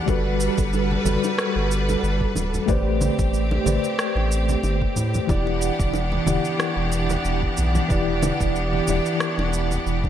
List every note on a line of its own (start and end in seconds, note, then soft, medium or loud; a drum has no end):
0.00 2.64 D4 medium
0.00 2.64 F#5 medium
0.06 0.49 G1 medium
0.06 1.01 G3 medium
0.06 2.66 G3 medium
0.06 1.02 F#4 medium
0.06 2.66 A4 medium
0.06 1.02 A4 medium
0.06 2.66 B4 medium
0.06 1.03 B4 loud
0.06 kick loud
0.06 high bongo medium
0.06 high conga medium
0.06 shaker soft
0.40 shaker medium
0.58 0.98 G1 medium
0.58 kick loud
0.58 shaker soft
0.73 high bongo soft
0.73 shaker soft
0.91 high conga medium
1.04 1.18 G1 loud
1.04 2.64 G3 medium
1.04 2.65 F#4 medium
1.04 2.65 A4 medium
1.04 2.66 B4 medium
1.04 low conga medium
1.04 shaker medium
1.24 high bongo medium
1.24 shaker soft
1.38 cross-stick medium
1.38 shaker soft
1.56 1.96 G1 medium
1.71 shaker medium
1.89 high bongo soft
1.89 high conga medium
1.89 shaker soft
2.03 2.27 G1 medium
2.03 shaker soft
2.21 kick medium
2.35 2.59 D1 medium
2.35 high bongo medium
2.35 low conga medium
2.35 shaker medium
2.54 low conga medium
2.54 shaker soft
2.66 3.10 A1 medium
2.66 3.62 A3 medium
2.66 5.27 A3 medium
2.66 5.26 C4 medium
2.66 3.62 G4 medium
2.66 5.26 G4 medium
2.66 3.63 B4 medium
2.66 3.63 C5 medium
2.66 3.63 D5 medium
2.66 kick loud
2.66 high conga medium
2.66 shaker soft
3.01 high bongo soft
3.01 low conga medium
3.01 shaker medium
3.19 3.59 A1 medium
3.19 kick loud
3.19 shaker soft
3.34 shaker soft
3.51 high bongo medium
3.51 high conga medium
3.64 3.78 A1 medium
3.64 5.25 A3 medium
3.64 5.25 G4 medium
3.64 5.26 B4 medium
3.64 5.26 C5 medium
3.64 5.27 D5 medium
3.64 low conga medium
3.64 shaker medium
3.84 shaker soft
3.99 cross-stick medium
3.99 shaker soft
4.15 4.56 A1 medium
4.15 high bongo soft
4.32 shaker medium
4.49 high conga medium
4.49 shaker soft
4.63 4.87 G1 medium
4.63 high bongo medium
4.63 shaker soft
4.82 kick medium
4.96 5.20 A2 loud
4.96 low conga medium
4.96 shaker medium
5.14 low conga medium
5.14 shaker soft
5.27 5.71 E1 medium
5.27 6.23 E3 medium
5.27 10.09 E3 medium
5.27 10.09 B3 medium
5.27 10.09 D4 medium
5.27 6.23 E4 medium
5.27 6.24 G4 medium
5.27 10.09 G4 medium
5.27 6.24 D5 loud
5.27 10.09 F#5 medium
5.27 kick loud
5.27 high conga medium
5.27 shaker soft
5.47 high bongo soft
5.62 shaker medium
5.79 6.20 E1 medium
5.79 kick loud
5.79 shaker soft
5.94 high bongo medium
5.94 shaker soft
6.12 high conga medium
6.25 6.39 E1 loud
6.25 7.86 E3 medium
6.25 7.86 E4 medium
6.25 7.87 G4 medium
6.25 7.87 D5 medium
6.25 low conga medium
6.25 shaker medium
6.45 shaker soft
6.60 cross-stick medium
6.60 high bongo soft
6.60 shaker soft
6.77 7.17 E1 medium
6.92 shaker medium
7.09 high bongo medium
7.09 high conga medium
7.09 shaker soft
7.25 7.48 E1 medium
7.25 shaker soft
7.42 kick medium
7.57 7.81 B1 medium
7.57 low conga medium
7.57 shaker medium
7.75 high bongo soft
7.75 low conga medium
7.75 shaker soft
7.88 8.32 E1 medium
7.88 8.83 E3 loud
7.88 8.84 E4 medium
7.88 8.85 G4 medium
7.88 8.85 D5 loud
7.88 kick loud
7.88 high conga medium
7.88 shaker soft
8.22 high bongo medium
8.22 low conga medium
8.22 shaker medium
8.40 8.81 E1 medium
8.40 kick loud
8.40 shaker soft
8.56 shaker soft
8.73 high conga medium
8.87 9.00 E1 loud
8.87 10.09 E3 medium
8.87 10.09 E4 medium
8.87 10.09 G4 medium
8.87 10.09 D5 medium
8.87 high bongo medium
8.87 low conga medium
8.87 shaker medium
9.06 shaker soft
9.20 cross-stick medium
9.20 shaker soft
9.38 9.78 E1 medium
9.38 high bongo medium
9.53 shaker medium
9.71 high conga medium
9.71 shaker soft
9.86 10.09 E1 medium
9.86 shaker soft
10.04 kick medium
10.04 high bongo soft